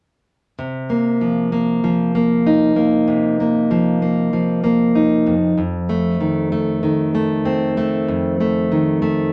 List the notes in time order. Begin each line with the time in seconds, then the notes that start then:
0.59 C3
0.90 A#3
1.21 F3
1.52 A#3
1.84 F3
2.15 A#3
2.47 D#4
2.76 A#3
3.08 C3
3.40 A#3
3.71 F3
4.02 A#3
4.33 F3
4.64 A#3
4.95 D#4
5.26 F2
5.58 F2
5.89 A3
6.21 D#3
6.52 A3
6.83 D#3
7.15 A3
7.45 C4
7.77 A3
8.09 F2
8.41 A3
8.72 D#3
9.02 A3